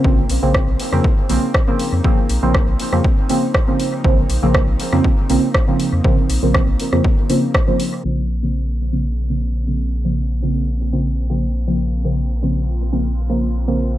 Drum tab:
HH |--o---o---o---o-|--o---o---o---o-|--o---o---o---o-|--o---o---o---o-|
SD |----r--r----r---|----r--r----r---|----r--r----r---|----r--r----r---|
BD |o---o---o---o---|o---o---o---o---|o---o---o---o---|o---o---o---o---|

HH |------o---o---o-|--o---o---o---o-|--o---o---o---o-|
SD |----------------|----------------|----------------|
BD |----------------|----------------|----------------|